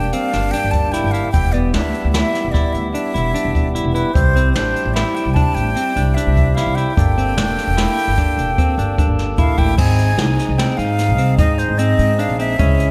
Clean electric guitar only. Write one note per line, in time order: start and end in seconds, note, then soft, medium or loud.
0.14 0.30 C4 medium
0.34 0.50 D4 medium
0.54 0.86 D4 medium
0.93 1.10 E4 medium
1.14 1.30 E4 medium
1.54 1.70 B3 medium
1.75 2.07 D4 medium
2.14 2.47 E4 medium
2.54 2.87 E4 medium
2.94 3.11 D4 medium
3.14 3.31 E4 medium
3.34 3.68 D4 medium
3.75 3.92 E4 medium
3.95 4.11 E4 medium
4.36 4.52 C4 medium
4.56 4.89 D4 medium
4.96 5.29 E4 medium
5.36 5.69 D4 medium
5.76 5.93 C4 medium
5.96 6.13 D4 medium
6.17 6.49 D4 medium
6.57 6.73 E4 medium
6.77 6.94 E4 medium
7.18 7.34 C4 medium
7.37 7.70 D4 medium
7.77 8.10 E4 medium
8.18 8.51 D4 medium
8.59 8.75 C4 medium
8.79 8.95 D4 medium
8.99 9.31 D4 medium
9.39 9.55 E4 medium
9.58 9.74 E4 medium
9.78 10.11 C4 medium
10.18 10.51 D#4 medium
10.58 10.75 C4 medium
10.79 11.12 D#4 medium
11.18 11.35 C4 medium
11.39 11.72 D#4 medium
11.79 12.12 C4 medium
12.19 12.35 D4 medium
12.39 12.56 C4 medium
12.59 12.91 C#4 medium